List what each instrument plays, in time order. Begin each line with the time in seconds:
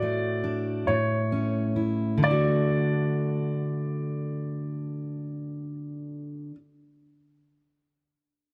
Already playing: steel-string acoustic guitar A2 F#4, grand piano D5
0.02 steel-string acoustic guitar A3
0.44 steel-string acoustic guitar D4
0.87 steel-string acoustic guitar A2, grand piano C#5
1.32 steel-string acoustic guitar C#4
1.76 steel-string acoustic guitar E4
2.18 steel-string acoustic guitar D3
2.23 steel-string acoustic guitar A3, grand piano D5
2.27 steel-string acoustic guitar D4 F#4